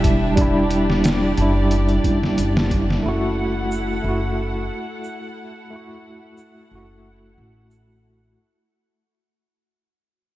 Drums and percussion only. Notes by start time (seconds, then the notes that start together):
0.04 kick, closed hi-hat
0.37 kick, closed hi-hat
0.71 closed hi-hat
0.90 snare
1.04 snare, closed hi-hat, shaker
1.37 closed hi-hat
1.71 closed hi-hat
1.89 closed hi-hat
2.04 kick, closed hi-hat
2.23 snare
2.38 closed hi-hat, shaker
2.57 snare
2.71 kick, closed hi-hat
2.90 snare
3.72 shaker
5.04 shaker
6.38 shaker
7.71 shaker